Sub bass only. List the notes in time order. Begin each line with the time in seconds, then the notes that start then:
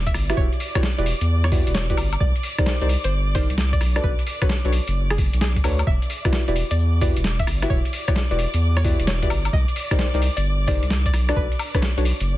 Already playing: E1
0.14 G1
0.37 E1
0.98 E1
1.21 E2
1.52 E2
1.67 E1
1.97 G1
2.20 C2
2.81 C2
3.04 G1
3.35 G1
3.50 C2
3.81 B1
4.04 B1
4.65 B1
4.88 F#1
5.18 F#1
5.34 B1
5.64 D2
5.87 E1
6.48 E1
6.71 E2
7.01 E2
7.17 E1
7.47 G1
7.70 E1
8.31 E1
8.54 E2
8.84 E2
8.99 E1
9.30 G1
9.53 C2
10.14 C2
10.37 G1
10.68 G1
10.83 C2
11.13 B1
11.36 B1
11.97 B1
12.20 F#1